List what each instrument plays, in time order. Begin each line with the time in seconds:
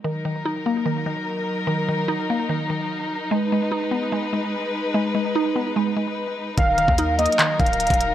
0.04 synth pluck D#3, string section F#3 D#4 A#4
0.25 synth pluck D#3
0.46 synth pluck D#4
0.66 synth pluck A#3
0.86 synth pluck D#3
1.06 synth pluck D#3
1.67 synth pluck D#3
1.89 synth pluck D#3
2.08 synth pluck D#4
2.30 synth pluck A#3
2.49 synth pluck D#3
2.70 synth pluck D#3
3.31 string section G#3 B4, synth pluck G#3
3.52 synth pluck G#3
3.72 synth pluck D#4
3.91 synth pluck B3
4.12 synth pluck G#3
4.33 synth pluck G#3
4.94 synth pluck G#3
5.15 synth pluck G#3
5.35 synth pluck D#4
5.56 synth pluck B3
5.76 synth pluck G#3
5.96 synth pluck G#3
6.57 808-style bass D#1, synth pluck D#3, string section F#3 D#4 A#4, soft synth lead F5, kick, closed hi-hat
6.78 synth pluck D#3, closed hi-hat
6.88 808-style bass D#2, kick
6.98 synth pluck D#4, closed hi-hat
7.19 synth pluck A#3, soft synth lead D#5, closed hi-hat
7.26 closed hi-hat
7.32 closed hi-hat
7.39 synth pluck D#3, clap, closed hi-hat
7.59 808-style bass D1, synth pluck D#3, soft synth lead F5, kick, closed hi-hat
7.66 closed hi-hat
7.73 closed hi-hat
7.80 closed hi-hat
7.87 closed hi-hat
7.90 808-style bass D#1, kick, closed hi-hat
7.94 closed hi-hat
8.01 closed hi-hat